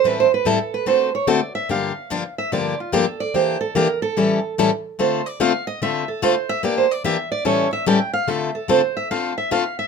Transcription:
X:1
M:4/4
L:1/8
Q:"Swing" 1/4=146
K:Dm
V:1 name="Steel-string acoustic guitar"
(3=B c B A B c ^c d e | f3 e d F A d | c A B A3 z2 | c d f _e =e A c e |
(3d c d e d ^c e g f | e A c e f e f e |]
V:2 name="Steel-string acoustic guitar"
[A,,E,G,CEA] z [A,,E,G,CEA] z [D,A,C^FA] z [D,A,CFA] z | [G,,D,F,B,DG] z [G,,D,F,B,DG] z [G,,D,F,B,DG] z [G,,D,F,B,DG] z | [E,B,DG] z [E,B,DG] z [A,,E,G,^CEA] z [A,,E,G,CEA] z | [D,A,CFA] z [D,A,CFA] z [D,A,CFA] z [D,A,CFA] z |
[E,B,DG] z [E,B,DG] z [A,,E,G,^CEA] z [A,,E,G,CEA] z | [D,A,CFA] z [D,A,CFA] z [D,A,CFA] z [D,A,CFA] z |]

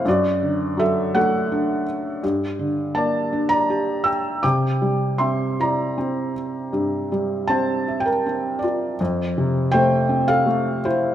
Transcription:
X:1
M:3/4
L:1/16
Q:1/4=81
K:Cmix
V:1 name="Felt piano"
[^Fd]4 [Ae]2 [A^f]4 z2 | z4 [da]3 [db]3 [ge']2 | [gd']4 [ec']2 [db]4 z2 | z4 [ca]3 [Bg]3 [Fd]2 |
z4 [cg]3 [Af]3 [Ec]2 |]
V:2 name="Felt piano"
^F,,2 D,2 ^F,2 A,2 D4 | G,,2 D,2 B,2 D2 G4 | C,2 G,2 C2 E2 C4 | G,,2 G,2 C2 e2 C4 |
F,,2 C,2 A,2 C2 A,4 |]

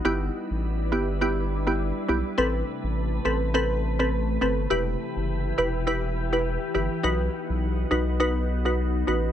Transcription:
X:1
M:4/4
L:1/16
Q:"Swing 16ths" 1/4=103
K:Em
V:1 name="Synth pluck"
[B,EG]4 z2 [B,EG] z [B,EG]3 [B,EG] z2 [B,EG] z | [CAB]4 z2 [CAB] z [CAB]3 [CAB] z2 [CAB] z | [EGB]4 z2 [EGB] z [EGB]3 [EGB] z2 [EGB] z | [^DFB]4 z2 [DFB] z [DFB]3 [DFB] z2 [DFB] z |]
V:2 name="Ambient pad"
[G,DEB]16 | [C,A,B]16 | [E,EGB]16 | [B,^DF]16 |]
V:3 name="Sub bass" clef=bass
G,,,2 z A,,,3 G,,,6- G,,, z B,,, z | A,,,2 z A,,,3 A,,,8 G,,,2 | E,,,2 z F,,,3 E,,,6- E,,, z G,,, z | B,,,2 z B,,,3 B,,,8 A,,,2 |]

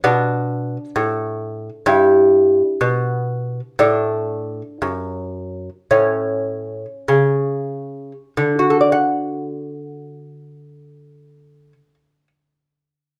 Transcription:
X:1
M:4/4
L:1/8
Q:1/4=54
K:D
V:1 name="Lute"
D4 E4 | D4 C4 | [D,FAdf]8 |]
V:2 name="Lute" clef=bass
B,,2 A,,2 G,,2 B,,2 | A,,2 F,,2 A,,2 C,2 | z8 |]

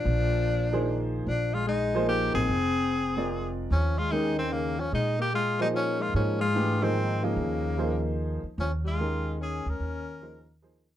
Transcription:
X:1
M:3/4
L:1/8
Q:"Swing" 1/4=148
K:Eb
V:1 name="Grand piano"
z3 [E,F,B,Ac]3 | z3 [F,B,EAc]3 | z3 [A,CFBd]3 | z2 [E,A,_DGB]3 z |
z3 [F,B,EAc]3 | [F,B,EAc] z [=E,=A,DG_c] [F,B,_E_A=c]2 [F,B,EAe]- | [F,B,EAe]2 [F,B,EAc]3 z | z2 [E,A,_DGB]3 z |
z2 [F,B,EAc] z [F,B,EAc] z |]
V:2 name="Tenor saxophone"
D4- D z | D F E2 G A- | A4- A z | _D F E C B, D |
E G F E _D F | _D F2 C2 B,- | B,4 z2 | _D F3 A B- |
B4 z2 |]
V:3 name="Alto saxophone" clef=bass
F,4- F, z | F, A, A,2 B, C- | C4- C z | F, A, A, E, _D, F, |
A, B, A, G, F, A, | F, A,2 E,2 _D,- | _D,4 z2 | F, A,3 _D D- |
_D4 z2 |]
V:4 name="Upright bass" clef=bass
B,,,6 | B,,,4- B,,, =A,,, | F,,,6 | E,,6 |
B,,6 | A,,6 | E,,4- E,, z | E,,4- E,, D,, |
E,,6 |]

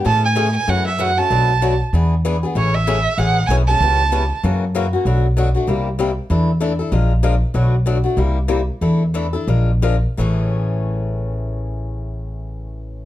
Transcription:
X:1
M:4/4
L:1/8
Q:"Swing" 1/4=192
K:A
V:1 name="Violin"
a g2 g f e f a- | a3 z4 z | c e3 f2 g a- | a4 z4 |
z8 | z8 | z8 | z8 |
z8 | z8 |]
V:2 name="Steel-string acoustic guitar"
[C,E,A,CG] z [C,E,A,CG] z [C,E,A,CF] z [C,E,A,CF] [A,CF] | [B,,F,A,DF] z [B,,F,A,DF] z [E,B,DG] z [E,B,DG] [B,DG] | [C,E,A,CG] z [C,E,A,CG] z [C,E,A,CG] z [C,E,A,CG] [A,CG] | [C,E,B,C=G] z [C,E,B,CG] z [C,E,^A,CF] z [C,E,A,CF] [A,CF] |
[B,,F,A,DF] z [B,,F,A,DF] [A,DF] [=C,=G,_B,E=G] z [C,G,B,EG] z | [E,A,DEA] z [E,A,DEA] [DEA] [=F,_A,D=F_B] z [F,A,DFB] z | [B,,F,A,DF] z [B,,F,A,DF] [A,DF] [=C,=G,_B,E=G] z [C,G,B,EG] z | [E,A,DEA] z [E,A,DEA] [DEA] [=F,_A,D=F_B] z [F,A,DFB] z |
[A,,C,E,A,CG]8- | [A,,C,E,A,CG]8 |]
V:3 name="Upright bass" clef=bass
A,,4 F,,4 | B,,,4 E,,4 | A,,,4 A,,,2 B,,,2 | C,,4 F,,4 |
B,,,4 =C,,4 | E,,4 _B,,,4 | B,,,4 =C,,4 | E,,4 _B,,,4 |
A,,,8- | A,,,8 |]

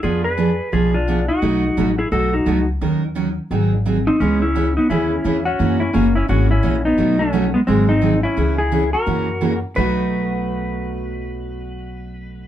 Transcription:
X:1
M:4/4
L:1/16
Q:"Swing" 1/4=173
K:Bmix
V:1 name="Electric slide guitar"
[=F_A]2 [A_c]6 [FA]2 [=DF]4 [^D^F]2- | [DF]6 [EG]2 [FA]2 [DF]4 z2 | z12 z2 [^B,D]2 | [G,C]2 [CE]4 [B,D]2 [CE]6 [CF]2- |
[CF]2 [CE]2 [^A,C]2 [CE]2 [CF]2 [CE]4 [B,D]2- | [B,D]2 [A,C]4 [G,B,]2 [G,^B,]2 [B,D]4 [CE]2- | [CE]2 [EG]4 [F^A]8 z2 | B16- |
B16 |]
V:2 name="Steel-string acoustic guitar"
[=F,_C=D_A]2 z2 [F,CDA] z3 [F,CDA]2 z2 [F,CDA] z3 | [B,,F,A,DF]2 z2 [B,,F,A,DF] z3 [B,,F,A,DF]2 z2 [B,,F,A,DF] z3 | [D,F,CD^A]2 z2 [D,F,CDA] z3 [D,F,^B,DG]2 z2 [D,F,B,DG] z3 | [C,E,B,CG]2 z2 [C,E,B,CG] z3 [C,E,B,CG]2 z2 [C,E,B,CG] z3 |
[C,E,^A,CF]2 z2 [C,E,A,CF] z3 [C,E,A,CF]2 z2 [C,E,A,CF] z3 | [B,,F,A,DF]2 z2 [B,,F,A,DF] z3 [D,F,^B,DG]2 z2 [D,F,B,DG] z3 | [C,E,B,CG]2 z2 [C,E,B,CG] z3 [C,E,^A,CF]2 z2 [C,E,A,CF] z3 | [B,,F,A,DF]16- |
[B,,F,A,DF]16 |]
V:3 name="Upright bass" clef=bass
=F,,8 _C,,8 | B,,,4 A,,,4 B,,,4 C,,4 | D,,8 G,,,8 | C,,8 D,,4 E,,4 |
F,,4 F,,,4 G,,,4 ^A,,,4 | B,,,8 G,,,8 | C,,8 F,,8 | B,,,16- |
B,,,16 |]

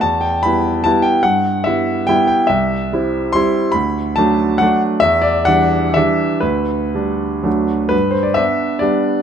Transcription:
X:1
M:3/4
L:1/16
Q:1/4=139
K:Em
V:1 name="Grand piano"
a2 g2 b4 a2 g2 | f4 e4 g2 g2 | [K:G] e8 c'4 | b4 a4 f2 z2 |
e2 d2 f4 e4 | B8- B2 z2 | B2 c d e4 d4 |]
V:2 name="Grand piano"
E,,4 [G,B,E]4 [G,B,E]4 | G,,4 [G,B,E]4 [G,B,E]4 | [K:G] C,,4 [G,CE]4 [G,CE]4 | D,,4 [F,A,D]4 [F,A,D]4 |
E,,4 [E,G,D]4 [E,G,D]4 | D,,4 [G,D]4 [D,,F,A,D]4 | G,,4 [B,D]4 [G,B,D]4 |]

